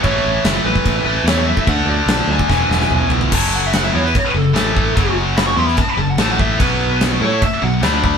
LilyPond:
<<
  \new Staff \with { instrumentName = "Lead electric guitar" } { \time 4/4 \key fis \minor \tempo 4 = 146 cis''4 r8 b'4. cis''8 e''8 | fis''8 d''8 a''8 gis''2 r8 | a''8 fis''16 e''16 fis''16 e''16 cis''16 b'16 cis''16 b'16 a'4.~ | a'8 r8 b''16 cis'''16 bis''16 b''16 a''16 b''16 a''16 fis''16 a''16 fis''16 e''8 |
b'4 r8 cis''8 e''8 fis''8 b''8 b''8 | }
  \new Staff \with { instrumentName = "Distorted electric guitar" } { \clef bass \time 4/4 \key fis \minor <a, e a>2~ <a, e a>8 <a, e a>8 <a, e a>4 | <d a d'>2 <e, b, e>2 | <fis, cis fis>4. <e b e'>8 r8 <fis, cis>8 <a, e a>4 | <fis, cis fis>4. <e b e'>8 r8 <fis, cis>8 <a, e a>4 |
<b, fis b>4. <a e' a'>8 r8 <b, fis>8 <d a d'>4 | }
  \new Staff \with { instrumentName = "Picked electric bass" } { \clef bass \time 4/4 \key fis \minor a,,8 a,,8 fis,,8 a,,8 a,,8 a,,8 e,4 | d,8 d,8 b,,8 d,8 e,,8 e,,8 b,,4 | fis,,4. e,8 r8 fis,,8 a,,4 | fis,,4. e,8 r8 fis,,8 a,,4 |
b,,4. a,8 r8 b,,8 d,4 | }
  \new DrumStaff \with { instrumentName = "Drums" } \drummode { \time 4/4 <cymc bd>4 <cymc sn>8. bd16 <cymc bd>4 <cymc sn>8. bd16 | <cymc bd>4 <cymc sn>8. bd16 <bd sn>8 sn16 sn16 toml8 tomfh16 tomfh16 | <cymc bd>4 <cymc sn>8. sn16 <cymc bd>4 <cymc sn>8 bd8 | <cymc bd>4 <cymc sn>8. sn16 <cymc bd>4 <cymc sn>8 bd8 |
<cymc bd>4 <cymc sn>4 <cymc bd>4 <cymc sn>8 bd8 | }
>>